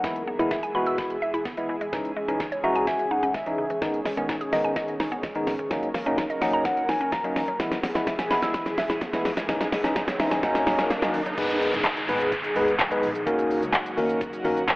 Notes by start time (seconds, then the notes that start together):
0.04 B2 E3 G#3 B3 E4 G#4, kick, snare, closed hi-hat
0.16 closed hi-hat
0.27 B3
0.39 E3 G#3 B3 E4, closed hi-hat
0.51 E5, kick, snare, closed hi-hat
0.63 G#5, closed hi-hat
0.75 E3 G#3 B3 F#4 B5
0.86 E6, closed hi-hat
0.98 B5, kick, snare, closed hi-hat
1.10 closed hi-hat
1.22 E5
1.34 E4, closed hi-hat
1.45 B3, kick, snare, closed hi-hat
1.57 E3 G#3 B3 E4, closed hi-hat
1.69 E3
1.81 G#3, closed hi-hat
1.93 C#3 E3 G#3 C#4 D#4, kick, snare, closed hi-hat
2.05 closed hi-hat
2.17 G#3
2.28 E3 G#3 C#4 D#4, closed hi-hat
2.40 D#4, kick, snare, closed hi-hat
2.52 C#5, closed hi-hat
2.64 E3 G#3 C#4 F#4 E5 A#5
2.75 G#5, closed hi-hat
2.87 E5 G#5, kick, snare, closed hi-hat
2.99 closed hi-hat
3.11 D#4 F#5
3.23 C#4, closed hi-hat
3.34 G#3 E5, kick, snare, closed hi-hat
3.46 E3 G#3 C#4 D#4, closed hi-hat
3.58 C#3
3.70 E3, closed hi-hat
3.82 G#2 B2 D#3 G#3 B3 D#4, kick, snare, closed hi-hat, riser
3.94 closed hi-hat
4.05 G#3, snare, open hi-hat
4.17 D#3 G#3 B3 C#4, closed hi-hat
4.29 D#4, kick, snare, closed hi-hat
4.41 G#4, closed hi-hat
4.52 D#3 G#3 B3 D#4 D#5, snare, open hi-hat
4.64 G#5, closed hi-hat
4.76 D#5, kick, snare, closed hi-hat
4.88 closed hi-hat
5.00 D#4, snare, open hi-hat
5.12 B3, closed hi-hat
5.23 G#3, kick, snare, closed hi-hat
5.35 D#3 G#3 B3 D#4, closed hi-hat
5.47 G#2, snare, open hi-hat
5.59 D#3, closed hi-hat
5.71 C#3 D#3 F#3 A#3 C#4 D#4 A#4, kick, snare, closed hi-hat
5.83 closed hi-hat
5.94 A#3, snare, open hi-hat
6.06 F#3 A#3 C#4 D#4, closed hi-hat
6.18 D#4, kick, snare, closed hi-hat
6.30 D#5, closed hi-hat
6.41 F#3 A#3 C#4 D#4 D#5 F#5, snare, open hi-hat
6.53 A#5, closed hi-hat
6.65 F#5, kick, snare, closed hi-hat
6.77 closed hi-hat
6.89 D#4 G#5, snare, open hi-hat
7.01 C#4, closed hi-hat
7.12 A#3 A#5, kick, snare, closed hi-hat
7.24 F#3 A#3 C#4 D#4, closed hi-hat
7.36 D#3, snare, open hi-hat
7.48 F#3, closed hi-hat
7.60 B2 E3 G#3 B3 E4 G#4, kick, snare, closed hi-hat, shaker
7.72 snare, closed hi-hat, shaker
7.83 B3, snare, open hi-hat, shaker
7.95 E3 G#3 B3 E4, snare, closed hi-hat, shaker
8.07 E5, kick, snare, closed hi-hat, shaker
8.19 G#5, snare, closed hi-hat, shaker
8.30 E3 G#3 B3 E4 B5, snare, open hi-hat, shaker
8.42 E6, snare, closed hi-hat, shaker
8.54 B5, kick, snare, closed hi-hat, shaker
8.66 snare, closed hi-hat, shaker
8.78 E5, snare, open hi-hat, shaker
8.90 E4, snare, closed hi-hat, shaker
9.01 B3, kick, snare, closed hi-hat, shaker
9.13 E3 G#3 B3 E4, snare, closed hi-hat, shaker
9.25 E3, snare, open hi-hat, shaker
9.37 G#3, snare, closed hi-hat, shaker
9.49 C#3 E3 G#3 C#4 D#4, kick, snare, closed hi-hat, shaker
9.61 snare, closed hi-hat, shaker
9.72 G#3, snare, open hi-hat, shaker
9.84 E3 G#3 C#4 D#4, snare, closed hi-hat, shaker
9.96 D#4, kick, snare, closed hi-hat, shaker
10.08 C#5, snare, closed hi-hat, shaker
10.19 E3 G#3 C#4 D#4 E5, snare, open hi-hat, shaker
10.31 G#5, snare, shaker
10.43 F#3 A#3 C#4 D#4 A#4 F#5, kick, snare, closed hi-hat, shaker
10.55 snare, closed hi-hat, shaker
10.67 D#4, snare, open hi-hat, shaker
10.79 C#4, snare, closed hi-hat, shaker
10.90 A#3, snare, closed hi-hat, shaker
11.02 F#3 A#3 C#4 D#4, snare, closed hi-hat, shaker
11.14 D#3, open hi-hat, shaker
11.26 F#3, closed hi-hat, shaker
11.38 G#1 B2 D#3 G#3 B3 D#4 G#4 B4, kick, closed hi-hat, crash, downlifter, shaker
11.50 closed hi-hat, shaker
11.62 open hi-hat, shaker
11.73 F#1, closed hi-hat, shaker
11.84 kick, snare, clap, closed hi-hat, shaker
11.97 closed hi-hat, shaker
12.09 G#1 G#3 B3 D#4 G#4 B4, open hi-hat, shaker
12.20 closed hi-hat, shaker
12.32 kick, closed hi-hat, shaker
12.44 closed hi-hat, shaker
12.56 G#1 G#3 B3 D#4 G#4 B4, open hi-hat, shaker
12.68 closed hi-hat, shaker
12.79 B1, kick, snare, clap, closed hi-hat, shaker
12.91 G#3 B3 D#4 G#4 B4, closed hi-hat, shaker
13.03 A#1, open hi-hat, shaker
13.15 closed hi-hat, shaker
13.26 D#2 C#3 F#3 A#3 C#4 D#4 F#4 A#4, kick, closed hi-hat, shaker
13.39 closed hi-hat, shaker
13.51 open hi-hat, shaker
13.62 C#2, closed hi-hat, shaker
13.73 kick, snare, clap, closed hi-hat, shaker
13.86 closed hi-hat, shaker
13.97 D#2 A#3 C#4 D#4 F#4 A#4, open hi-hat, shaker
14.09 closed hi-hat, shaker
14.21 kick, closed hi-hat, shaker
14.33 closed hi-hat, shaker
14.45 D#2 A#3 C#4 D#4 F#4 A#4, open hi-hat, shaker
14.57 closed hi-hat, shaker
14.68 F#2, kick, snare, clap, closed hi-hat, shaker